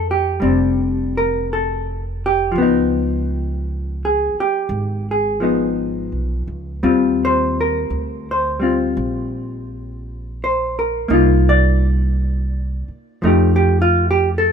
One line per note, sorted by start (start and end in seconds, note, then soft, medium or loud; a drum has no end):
0.00 0.37 F2 medium
0.00 0.39 G3 medium
0.00 0.41 C4 medium
0.00 0.42 D4 medium
0.11 1.11 G4 medium
0.40 2.52 F1 medium
0.40 2.51 G3 soft
0.40 2.56 C4 soft
0.40 2.56 D4 soft
1.17 1.50 A#4 medium
1.53 2.18 A4 medium
2.26 2.60 G4 medium
2.52 4.30 C#2 medium
2.52 5.39 F3 medium
2.58 5.41 B3 medium
2.62 5.42 D#4 medium
4.05 4.36 G#4 medium
4.35 muted upright bass stroke soft
4.40 5.05 G4 medium
4.69 6.08 G#1 medium
5.11 5.66 G#4 medium
5.40 6.83 F3 soft
5.40 6.83 B3 soft
5.40 6.84 D#4 soft
6.12 6.46 B1 medium
6.48 6.81 C#2 medium
6.83 7.87 D#2 medium
6.83 8.58 G3 medium
6.83 8.60 C4 soft
6.83 8.62 F4 soft
7.25 7.57 C5 medium
7.61 8.25 A#4 medium
7.90 8.93 D2 medium
8.31 8.86 C5 medium
8.60 11.08 G3 soft
8.60 11.10 C4 soft
8.60 11.12 F4 soft
8.97 11.07 A#1 medium
10.44 10.77 C5 medium
10.79 11.44 A#4 medium
11.08 12.84 C2 medium
11.08 13.23 A#3 medium
11.08 13.24 D#4 medium
11.13 13.25 F4 medium
11.49 11.84 D5 medium
12.88 muted upright bass stroke soft
13.22 14.52 F2 medium
13.22 14.52 F3 medium
13.22 14.52 A3 medium
13.22 14.52 D#4 medium
13.27 13.55 G4 medium
13.56 13.81 G4 medium
13.82 14.05 F4 medium
14.11 14.29 G4 medium
14.38 14.52 A4 medium